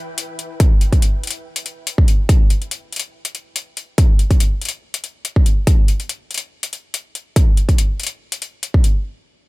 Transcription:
0.18 closed hi-hat medium
0.39 closed hi-hat soft
0.60 kick loud
0.60 closed hi-hat medium
0.81 closed hi-hat soft
0.93 kick medium
0.93 closed hi-hat soft
1.02 closed hi-hat medium
1.24 closed hi-hat soft
1.27 closed hi-hat medium
1.31 closed hi-hat medium
1.56 closed hi-hat medium
1.66 closed hi-hat soft
1.87 closed hi-hat medium
1.98 kick medium
2.08 closed hi-hat soft
2.29 kick loud
2.29 closed hi-hat medium
2.50 closed hi-hat soft
2.62 closed hi-hat soft
2.71 closed hi-hat medium
2.92 closed hi-hat soft
2.96 closed hi-hat medium
3.00 closed hi-hat medium
3.25 closed hi-hat medium
3.35 closed hi-hat soft
3.56 closed hi-hat medium
3.77 closed hi-hat soft
3.98 kick loud
3.98 closed hi-hat medium
4.19 closed hi-hat soft
4.31 kick medium
4.31 closed hi-hat soft
4.40 closed hi-hat medium
4.62 closed hi-hat soft
4.65 closed hi-hat medium
4.69 closed hi-hat medium
4.94 closed hi-hat medium
5.04 closed hi-hat soft
5.25 closed hi-hat medium
5.36 kick medium
5.46 closed hi-hat soft
5.67 kick loud
5.67 closed hi-hat medium
5.88 closed hi-hat soft
6.00 closed hi-hat soft
6.09 closed hi-hat medium
6.31 closed hi-hat soft
6.34 closed hi-hat medium
6.38 closed hi-hat medium
6.63 closed hi-hat medium
6.73 closed hi-hat soft
6.94 closed hi-hat medium
7.15 closed hi-hat soft
7.36 kick loud
7.36 closed hi-hat medium
7.57 closed hi-hat soft
7.69 kick medium
7.69 closed hi-hat soft
7.78 closed hi-hat medium
8.00 closed hi-hat soft
8.03 closed hi-hat medium
8.07 closed hi-hat medium
8.32 closed hi-hat medium
8.42 closed hi-hat medium
8.63 closed hi-hat medium
8.74 kick medium
8.84 closed hi-hat soft

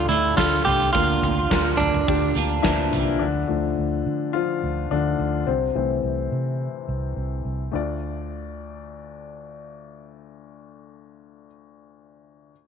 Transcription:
0.00 0.95 D3 medium
0.00 0.36 D4 medium
0.00 0.11 F4 medium
0.00 0.36 F4 medium
0.00 0.96 G4 loud
0.00 0.37 A4 medium
0.09 0.32 D2 loud
0.09 0.36 A3 medium
0.09 0.37 D4 medium
0.09 0.35 E4 medium
0.09 0.38 F4 medium
0.09 0.39 A4 medium
0.09 hi-hat pedal medium
0.09 open hi-hat medium
0.36 0.61 D2 loud
0.36 0.65 A3 medium
0.36 0.85 D4 medium
0.36 0.66 D4 medium
0.36 0.85 F4 medium
0.36 0.64 F4 medium
0.36 0.67 F4 medium
0.36 0.85 A4 medium
0.36 0.67 A4 medium
0.36 kick loud
0.36 snare loud
0.36 hi-hat pedal medium
0.36 open hi-hat medium
0.53 open hi-hat medium
0.65 0.89 C2 medium
0.65 0.94 A3 medium
0.65 0.94 D4 medium
0.65 0.95 F4 medium
0.65 0.92 G4 medium
0.65 floor tom medium
0.65 hi-hat pedal medium
0.65 open hi-hat medium
0.69 0.96 A4 medium
0.81 hi-hat pedal medium
0.93 1.18 D2 loud
0.93 1.37 D3 medium
0.93 1.75 D3 medium
0.93 1.37 A#3 medium
0.93 1.42 D4 medium
0.93 1.37 D4 medium
0.93 1.81 F4 medium
0.93 1.42 F4 medium
0.93 1.36 F4 medium
0.93 1.42 A#4 medium
0.93 1.35 A#4 medium
0.93 kick loud
0.93 hi-hat pedal medium
0.93 open hi-hat loud
1.23 1.46 D2 loud
1.23 floor tom medium
1.23 hi-hat pedal medium
1.23 open hi-hat medium
1.36 2.36 D4 soft
1.36 2.37 F4 medium
1.36 2.35 A#4 medium
1.50 1.74 D2 loud
1.50 1.98 D4 medium
1.50 1.99 F4 medium
1.50 1.99 A#4 medium
1.50 kick loud
1.50 snare loud
1.50 hi-hat pedal medium
1.50 open hi-hat medium
1.77 2.02 D2 loud
1.77 2.87 D4 medium
1.77 floor tom medium
1.77 hi-hat pedal medium
1.77 open hi-hat medium
1.94 floor tom medium
2.07 2.31 D2 loud
2.07 2.55 D4 medium
2.07 2.55 F4 medium
2.07 2.55 G4 medium
2.07 kick loud
2.07 hi-hat pedal medium
2.07 open hi-hat medium
2.35 2.59 D2 loud
2.35 2.63 A#3 medium
2.35 2.64 D4 medium
2.35 2.65 F4 medium
2.35 2.65 A#4 medium
2.35 hi-hat pedal medium
2.35 open hi-hat medium
2.62 2.88 D2 medium
2.62 3.17 E3 medium
2.62 3.12 F3 medium
2.62 2.92 A#3 medium
2.62 3.11 D4 medium
2.62 2.92 D4 medium
2.62 3.22 E4 loud
2.62 2.93 F4 medium
2.62 3.12 A#4 loud
2.62 kick loud
2.62 snare loud
2.62 hi-hat pedal medium
2.62 open hi-hat medium
2.67 2.94 A#4 medium
2.92 3.16 C2 medium
2.92 3.21 A#3 medium
2.92 3.21 D4 medium
2.92 3.22 F4 medium
2.92 3.23 A#4 medium
2.92 floor tom medium
2.92 hi-hat pedal medium
2.92 open hi-hat medium
3.19 3.44 D2 medium
3.19 4.30 D3 medium
3.19 3.47 D4 medium
3.48 3.73 D2 medium
3.48 4.29 F3 soft
3.48 4.30 A3 soft
3.48 4.30 D4 medium
3.78 4.01 D2 medium
4.06 4.41 D3 medium
4.33 4.87 F3 medium
4.33 4.92 F4 medium
4.64 4.86 D2 medium
4.91 5.14 D2 medium
4.91 5.45 D3 medium
4.91 5.17 F3 soft
4.91 5.17 A3 soft
4.91 5.17 D4 medium
5.19 5.42 D2 medium
5.47 5.71 C2 medium
5.47 7.14 C3 soft
5.47 5.75 C4 medium
5.75 5.99 C2 medium
5.75 6.13 E3 soft
5.75 6.13 A3 soft
5.75 6.14 C4 medium
6.03 6.27 C2 medium
6.32 6.67 C3 medium
6.89 7.12 C2 medium
7.17 7.40 C2 medium
7.45 7.68 C2 medium
7.71 11.46 D2 medium
7.71 11.46 A3 medium
7.71 11.46 D4 medium
7.71 11.47 F4 medium
7.71 11.48 D5 medium

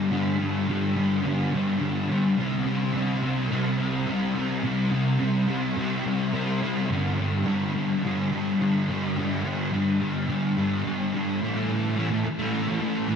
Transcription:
0.00 0.11 G3 medium
0.10 0.66 G2 medium
0.10 0.41 D3 medium
0.10 0.38 G3 medium
0.39 0.67 D3 medium
0.39 0.70 G3 medium
0.68 1.23 G2 medium
0.68 0.97 D3 medium
0.68 0.96 G3 medium
0.96 1.24 D3 medium
0.96 1.26 G3 medium
1.24 1.78 G2 medium
1.24 1.54 D3 loud
1.24 1.52 G3 loud
1.53 1.79 D3 medium
1.53 1.82 G3 medium
1.80 2.35 G2 medium
1.80 2.10 D3 medium
1.80 2.09 G3 medium
2.09 2.37 D3 medium
2.09 2.38 G3 medium
2.37 2.93 C3 medium
2.37 2.68 G3 medium
2.37 2.66 C4 medium
2.67 2.95 G3 medium
2.67 2.96 C4 medium
2.93 3.49 C3 medium
2.93 3.25 G3 medium
2.93 3.22 C4 medium
3.23 3.51 G3 medium
3.23 3.51 C4 medium
3.50 4.05 C3 medium
3.50 3.79 G3 loud
3.50 3.77 C4 loud
3.78 4.08 G3 medium
3.78 4.08 C4 medium
4.06 4.62 C3 medium
4.06 4.37 G3 medium
4.06 4.34 C4 medium
4.35 4.64 G3 medium
4.35 4.65 C4 medium
4.63 5.18 C3 medium
4.63 4.93 G3 medium
4.63 4.90 C4 medium
4.91 5.20 G3 medium
4.91 5.21 C4 medium
5.19 5.76 C3 medium
5.19 5.49 G3 medium
5.19 5.46 C4 medium
5.47 5.78 G3 medium
5.47 5.78 C4 medium
5.77 6.31 C3 medium
5.77 6.08 G3 loud
5.77 6.05 C4 loud
6.06 6.33 G3 medium
6.06 6.33 C4 medium
6.32 6.87 C3 medium
6.32 6.63 G3 medium
6.32 6.61 C4 medium
6.62 6.91 G3 medium
6.62 6.88 C4 medium
6.89 7.44 G2 medium
6.89 7.20 D3 medium
6.89 7.18 G3 medium
7.18 7.45 D3 medium
7.18 7.47 G3 medium
7.45 8.02 G2 medium
7.45 7.76 D3 medium
7.45 7.74 G3 medium
7.75 8.03 D3 medium
7.75 8.05 G3 medium
8.03 8.59 G2 medium
8.03 8.34 D3 loud
8.03 8.31 G3 loud
8.32 8.60 D3 medium
8.32 8.62 G3 medium
8.60 9.15 G2 medium
8.60 8.90 D3 medium
8.60 8.88 G3 medium
8.89 9.17 D3 medium
8.89 9.18 G3 medium
9.17 9.71 G2 medium
9.17 9.45 D3 medium
9.17 9.43 G3 medium
9.44 9.72 D3 medium
9.44 9.73 G3 medium
9.72 10.26 G2 medium
9.72 10.02 D3 medium
9.72 10.00 G3 medium
10.01 10.27 D3 medium
10.01 10.29 G3 medium
10.27 10.83 G2 medium
10.27 10.57 D3 medium
10.27 10.55 G3 loud
10.57 10.85 D3 medium
10.57 10.85 G3 medium
10.85 11.38 G2 medium
10.85 11.15 D3 medium
10.85 11.13 G3 medium
11.14 11.40 D3 medium
11.14 11.39 G3 medium
11.42 11.96 A2 medium
11.42 11.57 E3 medium
11.42 11.55 A3 medium
11.56 11.98 E3 medium
11.56 11.98 A3 medium
11.97 12.25 A2 medium
11.97 12.13 E3 medium
11.97 12.10 A3 loud
12.10 12.26 E3 medium
12.10 12.26 A3 medium
12.26 muted distorted electric guitar stroke soft
12.39 12.70 E3 medium
12.39 12.66 A3 medium
12.67 12.81 E3 medium
12.67 12.81 A3 medium
12.80 13.07 A2 medium
12.80 13.09 E3 medium
12.80 13.09 A3 medium
13.08 13.16 A2 loud
13.08 13.16 E3 loud
13.08 13.16 A3 medium

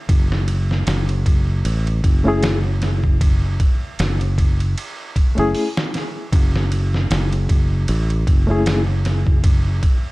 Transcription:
0.09 0.84 F#1 medium
0.09 kick loud
0.09 ride medium
0.32 snare soft
0.48 ride medium
0.71 snare soft
0.87 1.62 F#1 medium
0.87 snare loud
0.87 ride medium
1.09 ride soft
1.26 kick medium
1.26 ride medium
1.65 2.00 A1 loud
1.65 ride medium
1.87 ride soft
2.04 3.56 F#1 medium
2.04 kick medium
2.04 ride medium
2.24 2.56 A3 medium
2.24 2.56 C#4 medium
2.24 2.57 E4 medium
2.28 2.58 G#4 loud
2.43 snare loud
2.43 ride medium
2.82 snare soft
2.82 ride medium
3.04 kick medium
3.21 kick loud
3.21 ride medium
3.60 kick loud
3.60 ride medium
3.99 4.74 F#1 medium
3.99 snare loud
3.99 ride medium
4.21 ride soft
4.38 kick medium
4.38 ride medium
4.60 ride soft
4.78 ride medium
5.16 kick medium
5.16 ride medium
5.35 5.53 F#1 loud
5.35 5.67 A3 loud
5.35 5.68 C#4 medium
5.35 5.69 E4 medium
5.35 ride soft
5.39 5.69 G#4 loud
5.55 open hi-hat medium
5.77 snare loud
5.94 snare soft
5.94 ride medium
6.33 7.07 F#1 loud
6.33 kick loud
6.33 ride medium
6.56 snare medium
6.72 ride medium
6.94 snare soft
7.10 7.85 F#1 medium
7.10 snare loud
7.10 ride medium
7.33 ride soft
7.49 kick medium
7.49 ride medium
7.88 8.23 A1 loud
7.88 ride medium
8.10 ride soft
8.27 9.80 F#1 medium
8.27 kick loud
8.27 ride medium
8.47 8.79 A3 loud
8.47 8.79 C#4 medium
8.47 8.80 E4 medium
8.51 8.81 G#4 loud
8.66 snare loud
8.66 ride medium
9.05 snare soft
9.05 ride medium
9.27 kick medium
9.44 kick loud
9.44 ride medium
9.83 kick loud
9.83 ride medium

